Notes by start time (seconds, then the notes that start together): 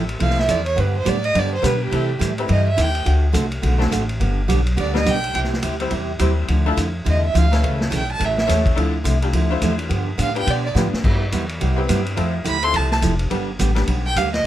Already playing: A1 A3 C4 E4 F4 A4
0.09 ride
0.19 C2 F3 C4 E4 A4 F5, kick, ride
0.30 snare
0.39 E5, snare
0.47 E2 F3 C4 E4 A4 D5, kick, hi-hat pedal, ride
0.66 C#5, ride
0.76 G2 D3 G3 B3 D4 G4 B4, kick, ride
0.97 C5
1.05 A2 D3 G3 B3 D4 G4 D5, kick, hi-hat pedal, ride
1.24 D#5, ride
1.34 G2 D3 G3 B3 D4 G4, kick, ride
1.39 D5
1.54 C5
1.62 B2 D3 G3 B3 D4 G4 B4, kick, hi-hat pedal, ride
1.66 B4
1.83 G4
1.91 C3 E3 G3 A3 C4 E4 G4 A4, kick, ride
2.19 A2 C3 E3 G3 C4 E4 A4, kick, hi-hat pedal, ride
2.38 A3 C4 E4 G4 B4, ride
2.48 G2 C3 E3 G3 C4 E4 A4 D#5, kick, ride
2.68 E5
2.77 D#2 C3 E3 G3 C4 E4 A4, kick, hi-hat pedal, ride
2.81 G5
2.95 ride
3.05 D2 D3 A3 C4 F#4 A4, kick, ride
3.33 C2 D3 A3 C4 F#4 A4, kick, hi-hat pedal, ride
3.52 ride
3.62 B1 D3 A3 C4 F#4 A4, kick, ride
3.78 A3 C4 D4 F#4 A4, snare
3.91 A1 D3 A3 C4 F#4 A4, kick, hi-hat pedal, ride
4.09 ride
4.20 G1 D3 G3 B3 D4 G4, kick, ride
4.48 B1 D3 G3 B3 D4 G4, kick, hi-hat pedal, ride
4.67 ride
4.76 D2 D3 G3 B3 D4 G4, kick, ride
4.80 D5
4.94 G3 B3 D4 G4 B4 D#5, snare
5.05 B1 D3 G3 B3 D4 G4 G5, kick, hi-hat pedal, ride
5.24 ride
5.33 C2 C3 G3 C4 E4 G4, kick, ride
5.44 snare
5.53 snare
5.62 D2 C3 G3 C4 E4 G4, kick, hi-hat pedal, ride
5.80 G3 C4 E4 G4 C5, ride
5.90 E2 C3 G3 C4 E4 G4, kick, ride
6.19 D#2 C3 G3 C4 E4 G4 C5, kick, hi-hat pedal, ride
6.48 D2 D3 F3 A3 E4, kick, ride
6.66 A3 D4 E4 F4 A4
6.76 F2 D3 F3 A3 E4, kick, hi-hat pedal, ride
7.05 E2 D3 F3 A3 E4, kick, ride
7.10 D#5
7.25 E5
7.34 D2 D3 F3 A3 E4, kick, hi-hat pedal, ride
7.39 F5
7.51 A3 C#4 E4 A4 B4, snare, ride
7.63 C#2 C#3 E3 A3 C#4 A4, kick, ride
7.81 snare
7.90 B1 C#3 E3 A3 C#4 A4, kick, hi-hat pedal, ride
7.95 G5
8.12 A5
8.19 A1 C#3 E3 A3 C#4 A4, kick, ride
8.25 E5
8.38 E5, snare
8.47 E2 C#3 E3 A3 C#4 E4 A4 C#5, kick, snare, hi-hat pedal, ride
8.66 kick, ride
8.75 D2 D3 F3 A3 D4 E4 F4 A4, kick, ride
9.04 C2 D3 F3 A3 E4, kick, hi-hat pedal, ride
9.22 A3 D4 E4 F4 G4, ride
9.33 D2 D3 F3 A3 E4, kick, ride
9.50 A3 D4 E4 F4 C5
9.62 E2 D3 F3 A3 E4, kick, hi-hat pedal, ride
9.79 ride
9.89 G2 D3 F3 B3 D4 G4, kick, ride
10.18 A2 D3 F3 B3 D4 G4 F5, kick, hi-hat pedal, ride
10.35 B3 D4 F4 G4 B4 G5, ride
10.46 B2 D3 F3 B3 D4 G4, kick, ride
10.50 D5
10.66 D5
10.75 A2 D3 F3 B3 D4 F4 G4 B4, snare, hi-hat pedal
10.93 muted upright bass stroke, snare
11.04 G2 C3 G3 B3 E4 G4, kick, crash
11.32 E2 C3 G3 B3 E4 G4, kick, hi-hat pedal, ride
11.49 ride
11.61 C2 C3 G3 B3 E4 G4, kick, ride
11.76 B3 C4 E4 G4 B4
11.88 G2 C3 G3 B3 E4 G4, kick, hi-hat pedal, ride
12.06 ride
12.16 F2 F3 A3 C4 E4 F4 A4, kick, ride
12.44 D2 F3 C4 E4 A4 B5, kick, hi-hat pedal, ride
12.63 A3 C4 E4 F4 A4 C6, ride
12.73 C2 F3 C4 E4 A4 A5, kick, ride
12.91 A5, snare
13.02 F1 F3 C4 E4 A4, kick, hi-hat pedal, ride
13.19 ride
13.30 G1 D3 G3 B3 D4 G4 B4, kick, ride
13.59 A1 D3 G3 B3 D4 G4, kick, hi-hat pedal, ride
13.75 G3 B3 D4 G4 B4, snare, ride
13.87 B1 D3 G3 B3 D4 G4, kick, ride
14.06 G5
14.16 D2 D3 G3 B3 D4 G4 F5, kick, hi-hat pedal, ride
14.33 D#5, snare, ride